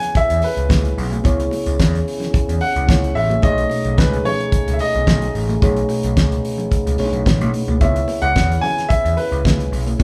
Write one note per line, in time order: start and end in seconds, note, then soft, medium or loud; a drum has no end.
0.00 1.20 C#3 medium
0.00 3.39 C#3 medium
0.00 1.21 B3 medium
0.00 1.22 B3 medium
0.00 1.21 E4 medium
0.00 3.39 E4 medium
0.00 7.77 G#4 medium
0.00 1.21 C#5 medium
0.00 0.16 G#5 loud
0.00 closed hi-hat soft
0.15 0.44 E5 loud
0.15 kick loud
0.15 closed hi-hat medium
0.30 0.39 E2 medium
0.30 closed hi-hat medium
0.42 0.94 B4 medium
0.42 open hi-hat medium
0.57 0.66 C#2 medium
0.57 closed hi-hat soft
0.69 0.89 C#2 loud
0.69 kick loud
0.69 snare loud
0.69 closed hi-hat medium
0.69 high conga medium
0.85 closed hi-hat soft
0.98 1.17 B1 loud
0.98 open hi-hat medium
1.12 closed hi-hat soft
1.12 high conga medium
1.23 1.44 C#2 loud
1.23 2.84 C#3 medium
1.23 2.85 B3 medium
1.23 3.41 C#4 medium
1.23 2.85 E4 medium
1.23 2.86 C#5 medium
1.23 kick loud
1.23 closed hi-hat medium
1.23 muted conga medium
1.40 closed hi-hat soft
1.51 open hi-hat medium
1.51 muted conga medium
1.66 1.75 C#2 medium
1.66 closed hi-hat medium
1.79 1.99 E2 loud
1.79 kick loud
1.79 snare loud
1.79 closed hi-hat medium
1.79 high conga medium
1.95 closed hi-hat soft
2.08 open hi-hat medium
2.20 snare soft
2.20 closed hi-hat soft
2.20 low conga medium
2.33 kick loud
2.33 closed hi-hat medium
2.33 muted conga soft
2.49 2.58 E2 medium
2.49 closed hi-hat medium
2.61 3.17 F#5 loud
2.61 open hi-hat medium
2.76 2.85 C#2 medium
2.76 closed hi-hat soft
2.87 3.08 C#2 loud
2.87 3.43 C#3 medium
2.87 3.43 B3 soft
2.87 3.44 E4 medium
2.87 3.43 C#5 medium
2.87 kick loud
2.87 snare loud
2.87 closed hi-hat medium
2.87 high conga medium
3.04 closed hi-hat soft
3.15 3.35 A1 loud
3.15 3.44 E5 loud
3.15 open hi-hat medium
3.30 closed hi-hat medium
3.30 high conga medium
3.42 3.62 B1 loud
3.42 5.57 B2 medium
3.42 7.77 C#3 medium
3.42 5.57 A3 medium
3.42 5.60 A3 medium
3.42 7.76 D#4 medium
3.42 5.58 D#4 medium
3.42 5.58 G#4 medium
3.42 5.59 C#5 medium
3.42 3.99 D#5 medium
3.42 kick loud
3.42 closed hi-hat medium
3.42 muted conga medium
3.58 closed hi-hat soft
3.70 open hi-hat medium
3.70 muted conga medium
3.84 3.98 B1 medium
3.84 closed hi-hat soft
3.98 4.17 C#2 loud
3.98 4.26 B4 medium
3.98 kick loud
3.98 snare loud
3.98 closed hi-hat medium
3.98 high conga medium
4.13 closed hi-hat soft
4.25 4.75 C#5 loud
4.25 open hi-hat medium
4.25 low conga medium
4.41 closed hi-hat soft
4.52 kick loud
4.52 closed hi-hat medium
4.52 muted conga soft
4.68 4.76 C#2 loud
4.68 closed hi-hat medium
4.73 4.80 E5 medium
4.79 5.31 D#5 loud
4.79 open hi-hat medium
4.95 5.04 B1 medium
4.95 closed hi-hat medium
5.07 5.26 B1 loud
5.07 kick loud
5.07 snare loud
5.07 closed hi-hat medium
5.07 high conga medium
5.22 closed hi-hat soft
5.35 5.54 A1 loud
5.35 open hi-hat medium
5.49 closed hi-hat soft
5.49 high conga medium
5.61 5.81 B1 loud
5.61 6.95 B2 medium
5.61 6.96 A3 medium
5.61 9.96 B3 medium
5.61 6.96 D#4 medium
5.61 6.96 G#4 medium
5.61 6.97 C#5 medium
5.61 kick loud
5.61 closed hi-hat medium
5.61 muted conga medium
5.76 closed hi-hat soft
5.89 open hi-hat medium
5.89 muted conga medium
6.03 6.13 B1 medium
6.03 closed hi-hat medium
6.17 6.36 C#2 medium
6.17 kick loud
6.17 snare loud
6.17 closed hi-hat medium
6.17 high conga medium
6.32 closed hi-hat soft
6.45 open hi-hat medium
6.58 closed hi-hat soft
6.58 low conga medium
6.71 kick loud
6.71 closed hi-hat medium
6.71 muted conga soft
6.87 6.95 C#2 medium
6.87 closed hi-hat medium
6.98 7.09 B1 medium
6.98 7.80 B2 medium
6.98 7.81 A3 medium
6.98 7.06 D4 soft
6.98 7.81 G#4 medium
6.98 7.81 C#5 medium
6.98 open hi-hat medium
7.05 7.84 D#4 medium
7.13 7.22 B1 medium
7.13 closed hi-hat soft
7.25 7.41 A1 medium
7.25 kick loud
7.25 snare loud
7.25 closed hi-hat medium
7.25 high conga medium
7.41 7.50 B1 loud
7.41 closed hi-hat soft
7.41 high conga medium
7.54 open hi-hat medium
7.68 7.77 C#2 loud
7.68 closed hi-hat soft
7.68 high conga medium
7.80 8.00 C#2 loud
7.80 9.95 C#3 medium
7.80 10.03 C#3 medium
7.80 9.96 B3 medium
7.80 10.03 E4 loud
7.80 9.96 E4 medium
7.80 10.03 G#4 medium
7.80 9.97 C#5 medium
7.80 8.24 E5 medium
7.80 kick loud
7.80 closed hi-hat medium
7.80 muted conga medium
7.96 closed hi-hat medium
8.08 open hi-hat medium
8.08 muted conga medium
8.22 8.31 C#2 loud
8.22 8.64 F#5 loud
8.22 closed hi-hat medium
8.36 8.55 E2 medium
8.36 kick loud
8.36 snare loud
8.36 closed hi-hat medium
8.36 high conga medium
8.52 closed hi-hat soft
8.61 8.90 G#5 loud
8.61 open hi-hat medium
8.61 low conga medium
8.78 snare soft
8.78 closed hi-hat soft
8.89 9.18 E5 loud
8.89 kick loud
8.89 closed hi-hat medium
8.89 muted conga soft
9.05 9.14 E2 medium
9.05 closed hi-hat medium
9.17 9.68 B4 medium
9.17 open hi-hat medium
9.32 9.41 C#2 loud
9.32 closed hi-hat soft
9.45 9.64 C#2 loud
9.45 kick loud
9.45 snare loud
9.45 closed hi-hat medium
9.45 high conga medium
9.60 closed hi-hat soft
9.72 9.91 B1 loud
9.72 open hi-hat medium
9.87 closed hi-hat medium
9.87 high conga medium
9.98 10.03 C#3 medium
9.98 10.03 B3 medium
9.98 kick loud
9.98 muted conga medium